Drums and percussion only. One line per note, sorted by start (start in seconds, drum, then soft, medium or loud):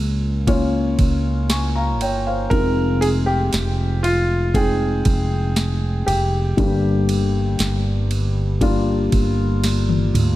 0.47 kick loud
0.47 ride medium
0.99 kick medium
0.99 ride medium
1.50 snare loud
1.50 ride medium
2.01 ride medium
2.51 kick loud
2.51 ride medium
3.02 ride medium
3.53 snare loud
3.53 ride medium
4.04 ride medium
4.54 kick loud
4.54 ride medium
5.05 kick medium
5.05 ride medium
5.56 snare loud
5.56 ride medium
6.08 ride medium
6.58 kick loud
6.58 ride medium
7.09 ride medium
7.59 snare loud
7.59 ride medium
8.11 ride medium
8.61 kick loud
8.61 ride medium
9.12 kick medium
9.12 ride medium
9.64 snare medium
9.64 ride medium
9.89 high tom medium
10.15 mid tom loud
10.15 ride medium